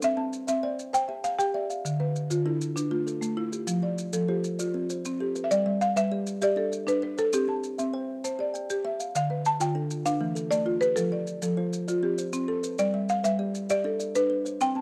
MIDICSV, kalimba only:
0, 0, Header, 1, 2, 480
1, 0, Start_track
1, 0, Tempo, 303797
1, 35, Time_signature, 12, 3, 24, 8
1, 23405, End_track
2, 0, Start_track
2, 0, Title_t, "Kalimba"
2, 0, Program_c, 0, 108
2, 0, Note_on_c, 0, 72, 67
2, 270, Note_on_c, 0, 60, 79
2, 514, Note_off_c, 0, 72, 0
2, 746, Note_on_c, 0, 76, 66
2, 754, Note_off_c, 0, 60, 0
2, 997, Note_on_c, 0, 72, 79
2, 997, Note_on_c, 0, 79, 67
2, 1471, Note_on_c, 0, 81, 63
2, 1473, Note_off_c, 0, 76, 0
2, 1478, Note_off_c, 0, 72, 0
2, 1716, Note_on_c, 0, 67, 81
2, 1719, Note_off_c, 0, 79, 0
2, 1960, Note_on_c, 0, 79, 66
2, 2196, Note_off_c, 0, 81, 0
2, 2199, Note_off_c, 0, 67, 0
2, 2440, Note_on_c, 0, 76, 84
2, 2681, Note_off_c, 0, 79, 0
2, 2682, Note_on_c, 0, 77, 63
2, 2921, Note_off_c, 0, 76, 0
2, 3159, Note_on_c, 0, 50, 81
2, 3404, Note_off_c, 0, 77, 0
2, 3642, Note_off_c, 0, 50, 0
2, 3643, Note_on_c, 0, 65, 75
2, 3882, Note_on_c, 0, 62, 88
2, 3885, Note_on_c, 0, 69, 65
2, 4364, Note_on_c, 0, 71, 62
2, 4365, Note_off_c, 0, 62, 0
2, 4365, Note_off_c, 0, 65, 0
2, 4601, Note_on_c, 0, 57, 83
2, 4607, Note_off_c, 0, 69, 0
2, 4845, Note_on_c, 0, 69, 65
2, 5085, Note_off_c, 0, 57, 0
2, 5087, Note_off_c, 0, 71, 0
2, 5327, Note_on_c, 0, 65, 74
2, 5567, Note_on_c, 0, 67, 65
2, 5569, Note_off_c, 0, 69, 0
2, 5809, Note_off_c, 0, 65, 0
2, 6042, Note_on_c, 0, 53, 78
2, 6290, Note_off_c, 0, 67, 0
2, 6528, Note_off_c, 0, 53, 0
2, 6528, Note_on_c, 0, 69, 69
2, 6768, Note_on_c, 0, 65, 83
2, 6768, Note_on_c, 0, 72, 72
2, 7250, Note_on_c, 0, 74, 62
2, 7251, Note_off_c, 0, 65, 0
2, 7252, Note_off_c, 0, 69, 0
2, 7492, Note_off_c, 0, 72, 0
2, 7493, Note_on_c, 0, 60, 82
2, 7741, Note_on_c, 0, 72, 63
2, 7973, Note_off_c, 0, 74, 0
2, 7974, Note_off_c, 0, 60, 0
2, 8223, Note_on_c, 0, 69, 71
2, 8459, Note_off_c, 0, 72, 0
2, 8461, Note_on_c, 0, 71, 63
2, 8700, Note_off_c, 0, 69, 0
2, 8941, Note_on_c, 0, 55, 81
2, 9179, Note_off_c, 0, 71, 0
2, 9418, Note_off_c, 0, 55, 0
2, 9423, Note_on_c, 0, 71, 80
2, 9662, Note_on_c, 0, 67, 88
2, 9663, Note_on_c, 0, 74, 81
2, 10136, Note_on_c, 0, 76, 68
2, 10139, Note_off_c, 0, 67, 0
2, 10139, Note_off_c, 0, 71, 0
2, 10367, Note_on_c, 0, 62, 89
2, 10379, Note_off_c, 0, 74, 0
2, 10615, Note_on_c, 0, 74, 64
2, 10851, Note_off_c, 0, 62, 0
2, 10855, Note_off_c, 0, 76, 0
2, 11096, Note_on_c, 0, 71, 80
2, 11335, Note_off_c, 0, 74, 0
2, 11338, Note_on_c, 0, 72, 63
2, 11575, Note_off_c, 0, 71, 0
2, 11817, Note_on_c, 0, 60, 82
2, 12056, Note_off_c, 0, 72, 0
2, 12295, Note_off_c, 0, 60, 0
2, 12297, Note_on_c, 0, 76, 78
2, 12536, Note_on_c, 0, 72, 88
2, 12539, Note_on_c, 0, 79, 67
2, 13014, Note_off_c, 0, 72, 0
2, 13014, Note_off_c, 0, 76, 0
2, 13020, Note_on_c, 0, 81, 68
2, 13254, Note_on_c, 0, 67, 80
2, 13255, Note_off_c, 0, 79, 0
2, 13491, Note_on_c, 0, 79, 66
2, 13732, Note_off_c, 0, 67, 0
2, 13736, Note_off_c, 0, 81, 0
2, 13975, Note_on_c, 0, 76, 89
2, 14210, Note_off_c, 0, 79, 0
2, 14213, Note_on_c, 0, 77, 67
2, 14453, Note_off_c, 0, 76, 0
2, 14692, Note_on_c, 0, 50, 74
2, 14931, Note_off_c, 0, 77, 0
2, 15169, Note_on_c, 0, 65, 74
2, 15170, Note_off_c, 0, 50, 0
2, 15402, Note_on_c, 0, 69, 69
2, 15405, Note_on_c, 0, 62, 85
2, 15885, Note_on_c, 0, 71, 66
2, 15886, Note_off_c, 0, 62, 0
2, 15888, Note_off_c, 0, 65, 0
2, 16124, Note_off_c, 0, 69, 0
2, 16124, Note_on_c, 0, 57, 84
2, 16359, Note_on_c, 0, 69, 74
2, 16605, Note_off_c, 0, 57, 0
2, 16605, Note_off_c, 0, 71, 0
2, 16844, Note_on_c, 0, 65, 79
2, 17082, Note_off_c, 0, 69, 0
2, 17090, Note_on_c, 0, 67, 72
2, 17324, Note_off_c, 0, 65, 0
2, 17568, Note_on_c, 0, 53, 84
2, 17807, Note_off_c, 0, 67, 0
2, 18046, Note_off_c, 0, 53, 0
2, 18048, Note_on_c, 0, 69, 81
2, 18283, Note_on_c, 0, 72, 82
2, 18285, Note_on_c, 0, 65, 79
2, 18763, Note_off_c, 0, 65, 0
2, 18765, Note_off_c, 0, 69, 0
2, 18766, Note_on_c, 0, 74, 63
2, 19002, Note_off_c, 0, 72, 0
2, 19002, Note_on_c, 0, 60, 80
2, 19246, Note_on_c, 0, 72, 65
2, 19481, Note_off_c, 0, 60, 0
2, 19483, Note_off_c, 0, 74, 0
2, 19721, Note_on_c, 0, 69, 81
2, 19960, Note_on_c, 0, 71, 67
2, 19963, Note_off_c, 0, 72, 0
2, 20200, Note_off_c, 0, 69, 0
2, 20443, Note_on_c, 0, 55, 78
2, 20679, Note_off_c, 0, 71, 0
2, 20912, Note_on_c, 0, 71, 70
2, 20920, Note_off_c, 0, 55, 0
2, 21156, Note_on_c, 0, 67, 90
2, 21156, Note_on_c, 0, 74, 77
2, 21634, Note_off_c, 0, 71, 0
2, 21636, Note_off_c, 0, 67, 0
2, 21636, Note_on_c, 0, 76, 62
2, 21870, Note_on_c, 0, 62, 92
2, 21876, Note_off_c, 0, 74, 0
2, 22111, Note_on_c, 0, 74, 67
2, 22353, Note_off_c, 0, 62, 0
2, 22356, Note_off_c, 0, 76, 0
2, 22591, Note_on_c, 0, 71, 81
2, 22832, Note_off_c, 0, 74, 0
2, 22832, Note_on_c, 0, 72, 60
2, 23072, Note_off_c, 0, 71, 0
2, 23310, Note_on_c, 0, 60, 71
2, 23405, Note_off_c, 0, 60, 0
2, 23405, Note_off_c, 0, 72, 0
2, 23405, End_track
0, 0, End_of_file